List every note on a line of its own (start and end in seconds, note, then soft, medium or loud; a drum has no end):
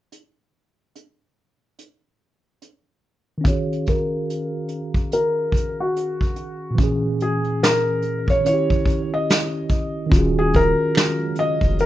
0.12 closed hi-hat soft
0.96 closed hi-hat medium
1.79 closed hi-hat soft
2.62 closed hi-hat medium
3.38 6.71 D#3 medium
3.38 6.73 C#4 medium
3.44 6.76 F#4 medium
3.44 3.84 C#5 medium
3.44 6.74 F5 medium
3.44 kick loud
3.44 closed hi-hat medium
3.51 6.77 G#4 medium
3.73 closed hi-hat soft
3.86 5.09 A#4 medium
3.86 kick medium
3.86 closed hi-hat medium
4.30 closed hi-hat medium
4.68 closed hi-hat medium
4.94 kick medium
5.12 5.76 A#4 medium
5.12 closed hi-hat medium
5.52 kick medium
5.57 closed hi-hat medium
5.80 6.75 F#4 medium
5.96 closed hi-hat medium
6.21 kick medium
6.36 closed hi-hat medium
6.71 8.38 A#2 medium
6.75 8.40 E3 medium
6.75 kick loud
6.79 8.42 C#4 medium
6.79 closed hi-hat medium
6.83 8.44 G#4 medium
7.20 7.59 G#4 medium
7.20 closed hi-hat medium
7.44 closed hi-hat soft
7.63 8.26 A#4 medium
7.63 snare loud
7.63 closed hi-hat medium
8.02 closed hi-hat medium
8.28 8.44 C#5 medium
8.28 kick medium
8.41 10.05 D#3 medium
8.45 10.08 C#4 medium
8.45 9.09 C#5 medium
8.45 closed hi-hat medium
8.49 10.11 E4 medium
8.54 10.13 G4 medium
8.70 kick medium
8.86 kick medium
8.90 closed hi-hat medium
9.14 10.09 D#5 medium
9.30 snare medium
9.30 closed hi-hat medium
9.69 kick medium
9.69 closed hi-hat medium
10.06 11.86 D#3 medium
10.06 11.86 C#4 medium
10.12 10.75 D#1 loud
10.12 11.86 C#3 medium
10.12 11.86 F#3 medium
10.12 11.86 G#3 medium
10.12 11.86 F4 medium
10.12 11.86 F5 medium
10.12 kick loud
10.12 closed hi-hat medium
10.16 11.86 F#4 medium
10.16 11.86 G#4 medium
10.39 10.54 G#4 medium
10.53 11.34 A#4 medium
10.53 kick medium
10.53 closed hi-hat medium
10.95 finger snap medium
10.95 snare loud
10.95 closed hi-hat medium
11.36 11.76 D#5 medium
11.36 closed hi-hat medium
11.61 11.86 F1 loud
11.61 kick medium
11.79 11.86 A#4 medium
11.79 closed hi-hat medium